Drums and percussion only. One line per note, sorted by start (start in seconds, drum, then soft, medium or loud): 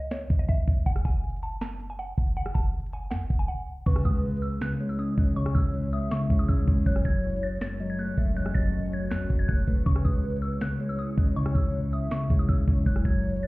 0.11 finger snap medium
0.11 snare loud
0.11 closed hi-hat medium
0.30 kick medium
0.30 closed hi-hat medium
0.49 kick loud
0.49 closed hi-hat medium
0.68 kick loud
0.68 open hi-hat medium
0.86 kick loud
0.86 closed hi-hat medium
0.96 cross-stick medium
1.05 kick loud
1.05 closed hi-hat medium
1.24 closed hi-hat medium
1.30 closed hi-hat medium
1.36 closed hi-hat medium
1.43 closed hi-hat medium
1.61 finger snap medium
1.61 snare loud
1.61 closed hi-hat medium
1.80 closed hi-hat medium
1.99 closed hi-hat medium
2.18 kick loud
2.18 closed hi-hat soft
2.27 closed hi-hat medium
2.36 closed hi-hat medium
2.46 cross-stick loud
2.55 kick medium
2.55 closed hi-hat medium
2.74 closed hi-hat soft
2.80 closed hi-hat medium
2.86 closed hi-hat medium
2.93 closed hi-hat medium
3.11 finger snap medium
3.11 snare loud
3.30 kick loud
3.30 closed hi-hat soft
3.40 closed hi-hat medium
3.86 kick loud
3.86 closed hi-hat medium
3.86 crash loud
3.96 cross-stick loud
4.05 kick loud
4.05 closed hi-hat medium
4.24 closed hi-hat medium
4.30 closed hi-hat medium
4.36 closed hi-hat medium
4.43 closed hi-hat medium
4.61 finger snap medium
4.61 snare loud
4.61 closed hi-hat medium
4.80 closed hi-hat medium
4.99 closed hi-hat medium
5.18 kick loud
5.18 closed hi-hat soft
5.27 closed hi-hat medium
5.37 closed hi-hat medium
5.46 cross-stick loud
5.55 kick loud
5.55 closed hi-hat medium
5.74 closed hi-hat medium
5.83 closed hi-hat soft
5.93 closed hi-hat medium
6.11 finger snap medium
6.11 snare loud
6.11 closed hi-hat medium
6.30 kick loud
6.30 closed hi-hat medium
6.49 kick medium
6.49 closed hi-hat medium
6.68 kick loud
6.68 open hi-hat medium
6.86 kick loud
6.86 closed hi-hat medium
6.96 cross-stick medium
7.05 kick loud
7.05 closed hi-hat medium
7.24 closed hi-hat medium
7.30 closed hi-hat medium
7.36 closed hi-hat medium
7.43 closed hi-hat medium
7.61 finger snap medium
7.61 snare loud
7.61 closed hi-hat medium
7.80 closed hi-hat medium
7.99 closed hi-hat medium
8.18 kick loud
8.18 closed hi-hat soft
8.27 closed hi-hat medium
8.36 closed hi-hat medium
8.46 cross-stick medium
8.55 kick loud
8.55 closed hi-hat medium
8.74 closed hi-hat soft
8.80 closed hi-hat medium
8.86 closed hi-hat medium
8.93 closed hi-hat medium
9.11 finger snap medium
9.11 snare loud
9.11 closed hi-hat medium
9.30 kick loud
9.30 closed hi-hat medium
9.39 closed hi-hat medium
9.49 kick medium
9.49 closed hi-hat medium
9.68 kick loud
9.68 open hi-hat medium
9.86 kick loud
9.86 closed hi-hat medium
9.96 cross-stick medium
10.05 kick loud
10.05 closed hi-hat medium
10.24 closed hi-hat medium
10.30 closed hi-hat medium
10.36 closed hi-hat medium
10.43 closed hi-hat medium
10.61 finger snap medium
10.61 snare loud
10.61 closed hi-hat medium
10.80 closed hi-hat medium
10.99 closed hi-hat medium
11.18 kick loud
11.18 closed hi-hat soft
11.27 closed hi-hat medium
11.36 closed hi-hat medium
11.46 cross-stick loud
11.55 kick loud
11.55 closed hi-hat medium
11.74 closed hi-hat medium
11.83 closed hi-hat soft
11.93 closed hi-hat medium
12.11 finger snap medium
12.11 snare loud
12.11 closed hi-hat medium
12.30 kick medium
12.30 closed hi-hat medium
12.49 kick loud
12.49 closed hi-hat medium
12.68 kick loud
12.68 open hi-hat medium
12.86 kick loud
12.86 closed hi-hat medium
12.96 cross-stick medium
13.05 kick loud
13.05 closed hi-hat medium
13.24 closed hi-hat medium
13.30 closed hi-hat medium
13.37 closed hi-hat medium
13.43 closed hi-hat medium